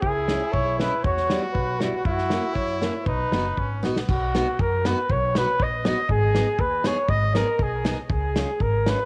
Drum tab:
CC |--------|--------|--------|--------|
HH |--------|--------|--------|--------|
SD |--o---o-|-oo---o-|-oo---o-|--o---oo|
BD |o---o---|o---o---|o---o---|o---o---|

CC |x-------|--------|--------|--------|
HH |--p---p-|--p---p-|--p---p-|--p---p-|
SD |--o---o-|--o---o-|--o---o-|--o---o-|
BD |o---o---|o---o---|o---o---|o---o---|

CC |--------|
HH |--p---p-|
SD |--o---o-|
BD |o---o---|